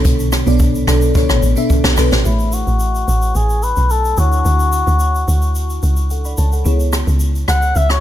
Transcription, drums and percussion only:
0.05 kick, hi-hat pedal, shaker
0.19 shaker
0.32 cross-stick, shaker
0.47 shaker
0.59 kick, shaker
0.75 shaker
0.87 cross-stick, shaker
1.01 shaker
1.15 kick, shaker
1.29 cross-stick, shaker
1.43 shaker
1.56 shaker
1.70 kick, shaker
1.84 cross-stick, snare, shaker
1.97 cross-stick, open hi-hat, shaker
2.12 snare, shaker
2.25 shaker
2.39 shaker
2.52 shaker
2.67 shaker
2.79 shaker
2.95 shaker
3.08 shaker
3.22 shaker
3.35 shaker
3.50 shaker
3.63 shaker
3.76 shaker
3.90 shaker
4.05 shaker
4.17 shaker
4.32 shaker
4.45 shaker
4.59 shaker
4.72 shaker
4.87 shaker
5.00 shaker
5.15 shaker
5.28 shaker
5.42 shaker
5.55 shaker
5.70 shaker
5.83 shaker
5.96 shaker
6.10 shaker
6.25 shaker
6.37 shaker
6.52 shaker
6.65 shaker
6.80 shaker
6.93 cross-stick, shaker
7.07 shaker
7.20 shaker
7.35 shaker
7.48 cross-stick, shaker
7.62 shaker
7.75 shaker
7.90 cross-stick, shaker

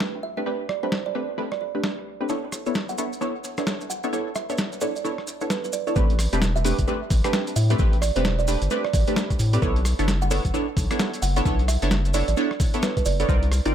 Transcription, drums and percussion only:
0.00 snare
0.69 cross-stick
0.92 snare
1.52 cross-stick
1.84 snare
2.29 maracas
2.52 cross-stick, maracas
2.66 maracas
2.75 snare, maracas
2.89 maracas
2.98 maracas
3.13 maracas
3.21 maracas
3.44 maracas
3.57 cross-stick, maracas
3.67 snare, maracas
3.81 maracas
3.91 maracas
4.04 maracas
4.13 maracas
4.35 cross-stick, maracas
4.50 maracas
4.58 snare, maracas
4.72 maracas
4.81 maracas
4.96 maracas
5.05 maracas
5.18 cross-stick
5.27 maracas
5.41 maracas
5.50 snare, maracas
5.64 maracas
5.73 maracas
5.87 maracas
5.96 kick, maracas
6.10 closed hi-hat
6.19 cross-stick, open hi-hat, maracas
6.33 closed hi-hat, maracas
6.42 snare, maracas
6.56 maracas
6.65 open hi-hat, maracas
6.79 kick, closed hi-hat, maracas
6.88 maracas
7.10 kick, open hi-hat, maracas
7.24 cross-stick, closed hi-hat, maracas
7.33 snare, maracas
7.47 closed hi-hat, maracas
7.56 open hi-hat, maracas
7.70 closed hi-hat, maracas
7.79 kick, maracas
7.93 closed hi-hat
8.02 cross-stick, open hi-hat, maracas
8.15 closed hi-hat, maracas
8.25 snare, maracas
8.40 maracas
8.48 open hi-hat, maracas
8.62 closed hi-hat, maracas
8.70 maracas
8.85 cross-stick
8.93 kick, open hi-hat, maracas
9.07 closed hi-hat, maracas
9.16 snare, maracas
9.30 kick, closed hi-hat, maracas
9.39 open hi-hat, maracas
9.53 closed hi-hat, maracas
9.62 kick, maracas
9.76 closed hi-hat
9.85 cross-stick, open hi-hat, maracas
9.99 closed hi-hat, maracas
10.08 snare, maracas
10.22 maracas
10.31 open hi-hat, maracas
10.45 kick, closed hi-hat, maracas
10.54 maracas
10.77 kick, open hi-hat, maracas
10.91 cross-stick, closed hi-hat, maracas
10.99 snare, maracas
11.14 closed hi-hat, maracas
11.22 open hi-hat, maracas
11.36 closed hi-hat, maracas
11.45 kick, maracas
11.59 closed hi-hat
11.68 cross-stick, open hi-hat, maracas
11.82 closed hi-hat, maracas
11.91 snare, maracas
12.05 closed hi-hat, maracas
12.14 open hi-hat, maracas
12.28 closed hi-hat, maracas
12.37 maracas
12.51 cross-stick
12.60 kick, open hi-hat, maracas
12.74 closed hi-hat, maracas
12.83 snare, maracas
12.97 kick, closed hi-hat, maracas
13.06 open hi-hat, maracas
13.20 closed hi-hat, maracas
13.29 kick, maracas
13.43 closed hi-hat
13.52 cross-stick, open hi-hat, maracas
13.65 closed hi-hat, maracas

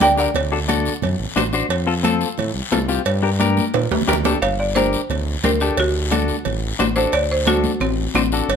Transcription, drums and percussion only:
0.00 cowbell, high conga, short guiro
0.18 short guiro
0.34 cowbell, low conga, long guiro
0.69 cowbell, high conga, short guiro
0.86 short guiro
1.02 cowbell, low conga, long guiro
1.36 cowbell, high conga, low timbale, short guiro
1.53 short guiro
1.70 cowbell, long guiro
2.04 cowbell, high conga, short guiro
2.21 short guiro
2.38 cowbell, low conga, long guiro
2.71 cowbell, high conga, low timbale, short guiro
2.89 short guiro
3.05 cowbell, long guiro
3.40 cowbell, high conga, short guiro
3.57 high conga, short guiro
3.74 cowbell, low conga, high timbale, long guiro
3.91 high conga, low timbale
4.02 low conga
4.08 cowbell, low timbale, short guiro
4.13 low conga
4.24 low conga, low timbale, short guiro
4.42 cowbell, long guiro
4.76 cowbell, high conga, short guiro
4.93 short guiro
5.10 cowbell, low conga, long guiro
5.44 cowbell, high conga, short guiro
5.60 short guiro
5.77 cowbell, low conga, long guiro
6.11 cowbell, high conga, short guiro
6.28 short guiro
6.45 cowbell, low conga, long guiro
6.79 cowbell, high conga, low timbale, short guiro
6.96 short guiro
7.12 cowbell, long guiro
7.47 cowbell, high conga, short guiro
7.64 high conga, short guiro
7.80 cowbell, low conga, long guiro
8.15 cowbell, high conga, short guiro
8.32 short guiro
8.49 cowbell, long guiro

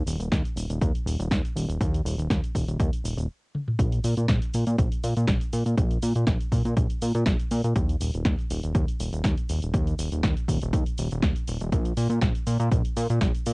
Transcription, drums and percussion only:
0.07 open hi-hat, cabasa
0.20 closed hi-hat, cabasa
0.32 kick, snare, closed hi-hat, cabasa
0.45 closed hi-hat, cabasa
0.57 open hi-hat, cabasa
0.70 closed hi-hat, cabasa
0.81 kick, closed hi-hat, cabasa
0.95 closed hi-hat, cabasa
1.07 open hi-hat, cabasa
1.20 closed hi-hat, cabasa
1.31 kick, snare, closed hi-hat, cabasa
1.45 closed hi-hat, cabasa
1.57 open hi-hat, cabasa
1.69 closed hi-hat, cabasa
1.81 kick, closed hi-hat, cabasa
1.94 closed hi-hat, cabasa
2.06 open hi-hat, cabasa
2.19 closed hi-hat, cabasa
2.30 kick, snare, closed hi-hat, cabasa
2.44 closed hi-hat, cabasa
2.55 kick, open hi-hat, cabasa
2.68 closed hi-hat, cabasa
2.80 kick, closed hi-hat, cabasa
2.93 closed hi-hat, cabasa
3.05 open hi-hat, cabasa
3.18 closed hi-hat, cabasa
3.55 high tom
3.68 mid tom
3.79 kick, closed hi-hat, cabasa
3.92 closed hi-hat, cabasa
4.04 open hi-hat, cabasa
4.17 closed hi-hat, cabasa
4.28 kick, snare, closed hi-hat, cabasa
4.42 closed hi-hat, cabasa
4.54 open hi-hat, cabasa
4.67 closed hi-hat, cabasa
4.78 kick, closed hi-hat, cabasa
4.92 closed hi-hat, cabasa
5.04 open hi-hat, cabasa
5.17 closed hi-hat, cabasa
5.27 kick, snare, closed hi-hat, cabasa
5.41 closed hi-hat, cabasa
5.53 open hi-hat, cabasa
5.66 closed hi-hat, cabasa
5.77 kick, closed hi-hat, cabasa
5.91 closed hi-hat, cabasa
6.02 open hi-hat, cabasa
6.15 closed hi-hat, cabasa
6.27 kick, snare, closed hi-hat, cabasa
6.40 closed hi-hat, cabasa
6.52 kick, open hi-hat, cabasa
6.65 closed hi-hat, cabasa
6.77 kick, closed hi-hat, cabasa
6.90 closed hi-hat, cabasa
7.02 open hi-hat, cabasa
7.15 closed hi-hat, cabasa
7.26 kick, snare, closed hi-hat, cabasa
7.40 closed hi-hat, cabasa
7.51 open hi-hat, cabasa
7.64 closed hi-hat, cabasa
7.76 kick, closed hi-hat, cabasa
7.89 closed hi-hat, cabasa
8.01 open hi-hat, cabasa
8.14 closed hi-hat, cabasa
8.25 kick, snare, closed hi-hat, cabasa
8.39 closed hi-hat, cabasa
8.50 open hi-hat, cabasa
8.63 closed hi-hat, cabasa
8.75 kick, closed hi-hat, cabasa
8.88 closed hi-hat, cabasa
9.00 open hi-hat, cabasa
9.13 closed hi-hat, cabasa
9.24 kick, snare, closed hi-hat, cabasa
9.38 closed hi-hat, cabasa
9.49 open hi-hat, cabasa
9.62 closed hi-hat, cabasa
9.74 kick, closed hi-hat, cabasa
9.87 closed hi-hat, cabasa
9.99 open hi-hat, cabasa
10.12 closed hi-hat, cabasa
10.23 kick, snare, closed hi-hat, cabasa
10.37 closed hi-hat, cabasa
10.48 kick, open hi-hat, cabasa
10.61 closed hi-hat, cabasa
10.73 kick, closed hi-hat, cabasa
10.86 closed hi-hat, cabasa
10.98 open hi-hat, cabasa
11.11 closed hi-hat, cabasa
11.22 kick, snare, closed hi-hat, cabasa
11.36 closed hi-hat, cabasa
11.47 open hi-hat, cabasa
11.60 closed hi-hat, cabasa
11.72 kick, closed hi-hat, cabasa
11.85 closed hi-hat, cabasa
11.97 open hi-hat, cabasa
12.10 closed hi-hat, cabasa
12.21 kick, snare, closed hi-hat, cabasa
12.35 closed hi-hat, cabasa
12.47 open hi-hat, cabasa
12.60 closed hi-hat, cabasa
12.72 kick, closed hi-hat, cabasa
12.85 closed hi-hat, cabasa
12.97 open hi-hat, cabasa
13.10 closed hi-hat, cabasa
13.21 kick, snare, closed hi-hat, cabasa
13.35 closed hi-hat, cabasa
13.46 open hi-hat, cabasa

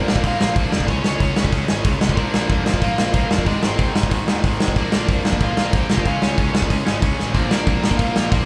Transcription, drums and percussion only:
0.08 snare
0.16 kick
0.24 kick, open hi-hat
0.41 snare
0.56 kick, open hi-hat
0.72 snare
0.80 kick
0.88 kick, open hi-hat
1.04 snare
1.20 kick, open hi-hat
1.36 snare
1.45 kick
1.52 kick, open hi-hat
1.68 snare
1.84 kick, open hi-hat
2.01 snare
2.09 kick
2.17 kick, open hi-hat
2.34 snare
2.49 kick, open hi-hat
2.66 snare
2.74 kick
2.81 kick, open hi-hat
2.98 snare
3.13 kick, open hi-hat
3.31 snare
3.38 kick
3.46 kick, open hi-hat
3.63 snare
3.79 kick, open hi-hat
3.96 snare
4.03 kick
4.11 kick, open hi-hat
4.28 snare
4.44 kick, open hi-hat
4.60 snare
4.68 kick
4.76 kick, open hi-hat
4.92 snare
5.08 kick, open hi-hat
5.25 snare
5.33 kick
5.40 kick, open hi-hat
5.57 snare
5.73 kick, open hi-hat
5.90 snare
5.97 kick
6.05 kick, open hi-hat
6.22 snare
6.38 kick, open hi-hat
6.55 snare
6.62 kick
6.70 kick, open hi-hat
6.87 snare
7.02 kick, open hi-hat
7.19 snare
7.35 kick, open hi-hat
7.51 snare
7.67 kick, open hi-hat
7.84 snare
7.91 kick
7.99 kick, open hi-hat
8.16 snare
8.32 kick, open hi-hat

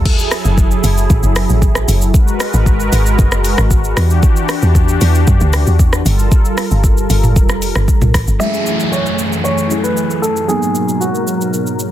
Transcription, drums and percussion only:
0.05 kick, crash
0.19 shaker
0.31 cross-stick, open hi-hat, shaker
0.45 shaker
0.58 kick, shaker
0.71 shaker
0.84 open hi-hat, shaker
0.98 shaker
1.10 kick, shaker
1.23 shaker
1.36 cross-stick, open hi-hat, shaker
1.49 shaker
1.62 kick, shaker
1.75 cross-stick, shaker
1.89 open hi-hat, shaker
2.02 shaker
2.14 kick, shaker
2.28 shaker
2.40 cross-stick, open hi-hat, shaker
2.54 shaker
2.66 kick, shaker
2.80 shaker
2.93 open hi-hat, shaker
3.06 shaker
3.19 kick, shaker
3.32 cross-stick, shaker
3.44 open hi-hat, shaker
3.58 cross-stick, shaker
3.71 kick, shaker
3.84 shaker
3.97 cross-stick, open hi-hat, shaker
4.10 shaker
4.23 kick, shaker
4.36 shaker
4.49 cross-stick, open hi-hat, shaker
4.62 shaker
4.75 kick, shaker
4.89 shaker
5.01 open hi-hat, shaker
5.15 shaker
5.27 kick, shaker
5.40 shaker
5.53 cross-stick, open hi-hat, shaker
5.67 shaker
5.79 kick, shaker
5.93 cross-stick, shaker
6.06 open hi-hat, shaker
6.19 shaker
6.32 kick, shaker
6.45 shaker
6.58 cross-stick, open hi-hat, shaker
6.71 shaker
6.84 kick, shaker
6.97 shaker
7.10 open hi-hat, shaker
7.24 mid tom, shaker
7.36 kick, shaker
7.49 cross-stick, shaker
7.62 open hi-hat, shaker
7.76 cross-stick, shaker
7.88 kick, shaker
8.02 mid tom, shaker
8.14 kick, cross-stick, open hi-hat, shaker
8.28 shaker
8.40 shaker
8.54 shaker
8.66 shaker
8.80 shaker
8.93 shaker
9.06 shaker
9.19 shaker
9.32 shaker
9.45 shaker
9.58 shaker
9.71 shaker
9.84 shaker
9.97 shaker
10.11 shaker
10.23 shaker
10.36 shaker
10.49 shaker
10.63 shaker
10.75 shaker
10.89 shaker
11.02 shaker
11.15 shaker
11.27 shaker
11.41 shaker
11.54 shaker
11.67 shaker
11.79 shaker

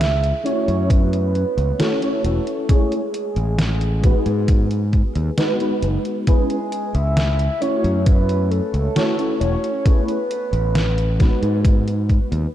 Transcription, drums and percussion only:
0.01 snare, closed hi-hat
0.24 closed hi-hat
0.46 closed hi-hat
0.68 closed hi-hat
0.90 kick, closed hi-hat
1.13 closed hi-hat
1.35 closed hi-hat
1.58 closed hi-hat
1.80 snare, closed hi-hat
2.02 closed hi-hat
2.24 closed hi-hat
2.47 closed hi-hat
2.69 kick, closed hi-hat
2.92 closed hi-hat
3.14 closed hi-hat
3.36 closed hi-hat
3.58 snare, closed hi-hat
3.81 closed hi-hat
4.04 kick, closed hi-hat
4.26 closed hi-hat
4.48 kick, closed hi-hat
4.71 closed hi-hat
4.93 kick, closed hi-hat
5.15 closed hi-hat
5.38 snare, closed hi-hat
5.60 closed hi-hat
5.82 closed hi-hat
6.05 closed hi-hat
6.27 kick, closed hi-hat
6.50 closed hi-hat
6.72 closed hi-hat
6.95 closed hi-hat
7.17 snare, closed hi-hat
7.39 closed hi-hat
7.62 closed hi-hat
7.84 closed hi-hat
8.06 kick, closed hi-hat
8.29 closed hi-hat
8.52 closed hi-hat
8.74 closed hi-hat
8.96 snare, closed hi-hat
9.19 closed hi-hat
9.41 closed hi-hat
9.64 closed hi-hat
9.86 kick, closed hi-hat
10.08 closed hi-hat
10.31 closed hi-hat
10.53 closed hi-hat
10.75 snare, closed hi-hat
10.98 closed hi-hat
11.20 kick, snare, closed hi-hat
11.43 closed hi-hat
11.65 kick, closed hi-hat
11.88 closed hi-hat
12.09 kick, closed hi-hat
12.32 closed hi-hat

